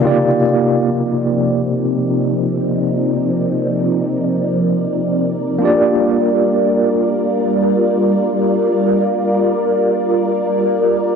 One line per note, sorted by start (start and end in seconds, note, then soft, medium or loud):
0.00 5.56 C3 medium
0.00 5.58 F3 medium
0.00 5.57 A#3 medium
0.00 5.58 C4 medium
0.00 5.58 D#4 medium
0.00 5.58 F4 medium
0.00 11.16 A#4 medium
0.00 11.16 D5 medium
0.05 5.59 G4 medium
0.05 5.59 D5 medium
5.59 11.16 G3 medium
5.59 11.14 A#3 medium
5.59 11.15 D4 medium
5.59 11.16 F4 medium
5.64 11.16 G4 medium
5.64 11.16 D5 medium